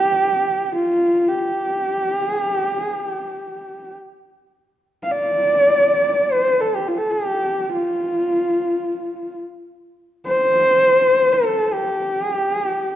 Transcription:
0, 0, Header, 1, 2, 480
1, 0, Start_track
1, 0, Tempo, 500000
1, 12439, End_track
2, 0, Start_track
2, 0, Title_t, "Horsehead fiddle"
2, 0, Program_c, 0, 110
2, 0, Note_on_c, 0, 67, 87
2, 708, Note_off_c, 0, 67, 0
2, 722, Note_on_c, 0, 65, 80
2, 1230, Note_on_c, 0, 67, 83
2, 1244, Note_off_c, 0, 65, 0
2, 2132, Note_off_c, 0, 67, 0
2, 2132, Note_on_c, 0, 68, 83
2, 2382, Note_off_c, 0, 68, 0
2, 2382, Note_on_c, 0, 67, 83
2, 2650, Note_off_c, 0, 67, 0
2, 2650, Note_on_c, 0, 68, 83
2, 2890, Note_off_c, 0, 68, 0
2, 2890, Note_on_c, 0, 67, 83
2, 3791, Note_off_c, 0, 67, 0
2, 4830, Note_on_c, 0, 77, 61
2, 4912, Note_on_c, 0, 74, 92
2, 4926, Note_off_c, 0, 77, 0
2, 6066, Note_on_c, 0, 72, 87
2, 6080, Note_off_c, 0, 74, 0
2, 6344, Note_on_c, 0, 69, 76
2, 6359, Note_off_c, 0, 72, 0
2, 6484, Note_on_c, 0, 67, 72
2, 6499, Note_off_c, 0, 69, 0
2, 6607, Note_on_c, 0, 65, 67
2, 6622, Note_off_c, 0, 67, 0
2, 6696, Note_on_c, 0, 69, 72
2, 6711, Note_off_c, 0, 65, 0
2, 6825, Note_on_c, 0, 67, 83
2, 6840, Note_off_c, 0, 69, 0
2, 7418, Note_off_c, 0, 67, 0
2, 7423, Note_on_c, 0, 65, 76
2, 9019, Note_off_c, 0, 65, 0
2, 9851, Note_on_c, 0, 72, 106
2, 10875, Note_on_c, 0, 69, 84
2, 10889, Note_off_c, 0, 72, 0
2, 11262, Note_on_c, 0, 67, 88
2, 11276, Note_off_c, 0, 69, 0
2, 11742, Note_off_c, 0, 67, 0
2, 11742, Note_on_c, 0, 68, 88
2, 11867, Note_off_c, 0, 68, 0
2, 11867, Note_on_c, 0, 67, 88
2, 12011, Note_off_c, 0, 67, 0
2, 12011, Note_on_c, 0, 68, 88
2, 12135, Note_off_c, 0, 68, 0
2, 12135, Note_on_c, 0, 67, 88
2, 12439, Note_off_c, 0, 67, 0
2, 12439, End_track
0, 0, End_of_file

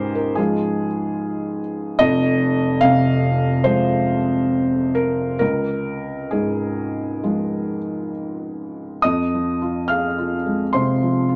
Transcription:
0, 0, Header, 1, 2, 480
1, 0, Start_track
1, 0, Key_signature, -4, "minor"
1, 0, Tempo, 818554
1, 1177, Time_signature, 4, 2, 24, 8
1, 1660, Tempo, 841515
1, 2620, Tempo, 899550
1, 5020, Tempo, 847458
1, 6348, End_track
2, 0, Start_track
2, 0, Title_t, "Felt piano"
2, 0, Program_c, 0, 0
2, 0, Control_c, 0, 64, 127
2, 0, Note_on_c, 0, 37, 64
2, 0, Note_on_c, 0, 44, 58
2, 0, Note_on_c, 0, 67, 90
2, 0, Note_on_c, 0, 68, 83
2, 0, Note_on_c, 0, 70, 102
2, 0, Note_on_c, 0, 72, 109
2, 89, Note_off_c, 0, 70, 0
2, 89, Note_on_c, 0, 70, 68
2, 91, Note_off_c, 0, 72, 0
2, 207, Note_off_c, 0, 68, 0
2, 207, Note_on_c, 0, 68, 93
2, 213, Note_off_c, 0, 70, 0
2, 219, Note_on_c, 0, 53, 58
2, 220, Note_on_c, 0, 56, 55
2, 225, Note_on_c, 0, 65, 58
2, 229, Control_c, 0, 64, 0
2, 232, Note_off_c, 0, 67, 0
2, 318, Control_c, 0, 64, 127
2, 502, Note_off_c, 0, 44, 0
2, 931, Note_off_c, 0, 68, 0
2, 1154, Note_off_c, 0, 53, 0
2, 1155, Note_off_c, 0, 56, 0
2, 1157, Note_off_c, 0, 37, 0
2, 1157, Note_off_c, 0, 65, 0
2, 1165, Note_on_c, 0, 75, 127
2, 1167, Note_on_c, 0, 29, 73
2, 1175, Note_on_c, 0, 41, 74
2, 1187, Control_c, 0, 64, 0
2, 1278, Control_c, 0, 64, 127
2, 1646, Note_on_c, 0, 77, 116
2, 1655, Note_off_c, 0, 75, 0
2, 1658, Note_on_c, 0, 48, 68
2, 2121, Note_on_c, 0, 72, 103
2, 2126, Note_off_c, 0, 77, 0
2, 2128, Note_on_c, 0, 53, 55
2, 2132, Note_on_c, 0, 56, 60
2, 2138, Note_on_c, 0, 65, 62
2, 2423, Note_off_c, 0, 48, 0
2, 2849, Note_off_c, 0, 72, 0
2, 2851, Note_on_c, 0, 70, 94
2, 3067, Note_off_c, 0, 29, 0
2, 3069, Note_off_c, 0, 53, 0
2, 3070, Note_off_c, 0, 41, 0
2, 3071, Note_off_c, 0, 56, 0
2, 3074, Note_off_c, 0, 65, 0
2, 3080, Note_off_c, 0, 70, 0
2, 3088, Note_on_c, 0, 70, 100
2, 3099, Note_on_c, 0, 37, 64
2, 3105, Control_c, 0, 64, 0
2, 3211, Control_c, 0, 64, 127
2, 3577, Note_on_c, 0, 68, 68
2, 3578, Note_off_c, 0, 70, 0
2, 3588, Note_on_c, 0, 44, 49
2, 4071, Note_on_c, 0, 53, 37
2, 4072, Note_on_c, 0, 56, 45
2, 4072, Note_on_c, 0, 65, 47
2, 4352, Note_off_c, 0, 44, 0
2, 4538, Note_off_c, 0, 68, 0
2, 5003, Note_off_c, 0, 37, 0
2, 5005, Note_off_c, 0, 53, 0
2, 5005, Note_off_c, 0, 65, 0
2, 5006, Note_off_c, 0, 56, 0
2, 5027, Note_on_c, 0, 87, 93
2, 5031, Control_c, 0, 64, 0
2, 5032, Note_on_c, 0, 75, 73
2, 5039, Note_on_c, 0, 41, 60
2, 5128, Control_c, 0, 64, 127
2, 5208, Note_on_c, 0, 53, 44
2, 5362, Note_on_c, 0, 65, 53
2, 5457, Note_off_c, 0, 53, 0
2, 5493, Note_off_c, 0, 75, 0
2, 5511, Note_on_c, 0, 89, 87
2, 5513, Note_off_c, 0, 87, 0
2, 5520, Note_on_c, 0, 77, 59
2, 5522, Note_on_c, 0, 68, 53
2, 5614, Note_off_c, 0, 65, 0
2, 5683, Note_on_c, 0, 65, 48
2, 5773, Note_off_c, 0, 68, 0
2, 5841, Note_on_c, 0, 56, 43
2, 5932, Note_off_c, 0, 65, 0
2, 5971, Note_off_c, 0, 77, 0
2, 5975, Note_off_c, 0, 41, 0
2, 5989, Note_off_c, 0, 89, 0
2, 5992, Note_on_c, 0, 84, 81
2, 5999, Note_on_c, 0, 72, 58
2, 6003, Note_on_c, 0, 48, 45
2, 6088, Note_off_c, 0, 56, 0
2, 6160, Note_on_c, 0, 53, 44
2, 6247, Note_off_c, 0, 48, 0
2, 6310, Note_on_c, 0, 65, 53
2, 6348, Note_off_c, 0, 53, 0
2, 6348, Note_off_c, 0, 65, 0
2, 6348, Note_off_c, 0, 72, 0
2, 6348, Note_off_c, 0, 84, 0
2, 6348, End_track
0, 0, End_of_file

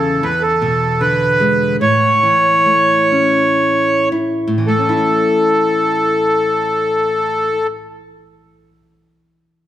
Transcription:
0, 0, Header, 1, 3, 480
1, 0, Start_track
1, 0, Key_signature, 3, "major"
1, 0, Tempo, 783290
1, 1101, Time_signature, 3, 2, 24, 8
1, 1101, Tempo, 855920
1, 1581, Tempo, 946372
1, 2061, Tempo, 1073345
1, 2541, Tempo, 1138520
1, 4650, End_track
2, 0, Start_track
2, 0, Title_t, "Accordion"
2, 0, Program_c, 0, 21
2, 0, Note_on_c, 0, 69, 74
2, 143, Note_on_c, 0, 71, 72
2, 154, Note_off_c, 0, 69, 0
2, 254, Note_on_c, 0, 69, 79
2, 259, Note_off_c, 0, 71, 0
2, 617, Note_on_c, 0, 71, 78
2, 620, Note_off_c, 0, 69, 0
2, 1081, Note_off_c, 0, 71, 0
2, 1111, Note_on_c, 0, 73, 101
2, 2278, Note_off_c, 0, 73, 0
2, 2541, Note_on_c, 0, 69, 73
2, 3804, Note_off_c, 0, 69, 0
2, 4650, End_track
3, 0, Start_track
3, 0, Title_t, "Nylon-string guitar"
3, 0, Program_c, 1, 24
3, 0, Note_on_c, 1, 40, 52
3, 0, Note_on_c, 1, 49, 49
3, 125, Note_off_c, 1, 40, 0
3, 131, Note_off_c, 1, 49, 0
3, 142, Note_on_c, 1, 40, 53
3, 378, Note_on_c, 1, 47, 44
3, 617, Note_on_c, 1, 50, 46
3, 858, Note_on_c, 1, 56, 46
3, 1079, Note_off_c, 1, 40, 0
3, 1083, Note_off_c, 1, 47, 0
3, 1091, Note_off_c, 1, 50, 0
3, 1097, Note_off_c, 1, 56, 0
3, 1109, Note_on_c, 1, 45, 61
3, 1345, Note_on_c, 1, 52, 49
3, 1584, Note_on_c, 1, 57, 44
3, 1817, Note_on_c, 1, 61, 43
3, 2278, Note_off_c, 1, 52, 0
3, 2294, Note_on_c, 1, 64, 41
3, 2447, Note_off_c, 1, 45, 0
3, 2453, Note_on_c, 1, 45, 43
3, 2499, Note_on_c, 1, 52, 42
3, 2524, Note_off_c, 1, 57, 0
3, 2524, Note_off_c, 1, 61, 0
3, 2534, Note_off_c, 1, 64, 0
3, 2546, Note_on_c, 1, 57, 42
3, 2589, Note_on_c, 1, 61, 41
3, 2633, Note_on_c, 1, 64, 48
3, 3721, Note_off_c, 1, 45, 0
3, 3765, Note_off_c, 1, 52, 0
3, 3810, Note_off_c, 1, 57, 0
3, 3853, Note_off_c, 1, 61, 0
3, 3896, Note_off_c, 1, 64, 0
3, 4650, End_track
0, 0, End_of_file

